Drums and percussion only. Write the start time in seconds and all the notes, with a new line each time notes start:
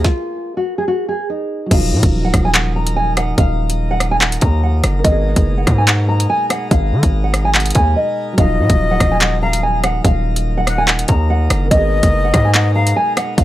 0.05 kick, snare
1.71 kick, closed hi-hat, crash
2.03 kick, closed hi-hat
2.34 kick, cross-stick, closed hi-hat
2.54 clap, closed hi-hat
2.87 closed hi-hat
3.17 cross-stick, closed hi-hat
3.38 kick, closed hi-hat
3.70 closed hi-hat
4.00 cross-stick, closed hi-hat
4.21 clap, closed hi-hat
4.32 closed hi-hat
4.41 kick, closed hi-hat
4.84 cross-stick, closed hi-hat
5.05 kick, closed hi-hat
5.36 kick, closed hi-hat
5.67 kick, cross-stick, closed hi-hat
5.87 clap, closed hi-hat
6.20 closed hi-hat
6.50 cross-stick, closed hi-hat
6.71 kick, closed hi-hat
7.03 kick, closed hi-hat
7.34 cross-stick, closed hi-hat
7.55 clap, closed hi-hat
7.60 closed hi-hat
7.66 closed hi-hat
7.70 closed hi-hat
7.75 kick, closed hi-hat
8.38 kick, closed hi-hat
8.70 kick, closed hi-hat
9.00 kick, cross-stick, closed hi-hat
9.21 clap, closed hi-hat
9.53 closed hi-hat
9.84 cross-stick, closed hi-hat
10.05 kick, closed hi-hat
10.36 closed hi-hat
10.67 cross-stick, closed hi-hat
10.88 clap, closed hi-hat
10.99 closed hi-hat
11.08 kick, closed hi-hat
11.50 cross-stick, closed hi-hat
11.71 kick, closed hi-hat
12.03 kick, closed hi-hat
12.34 kick, cross-stick, closed hi-hat
12.54 clap, closed hi-hat
12.87 closed hi-hat
13.17 cross-stick, closed hi-hat
13.38 kick, closed hi-hat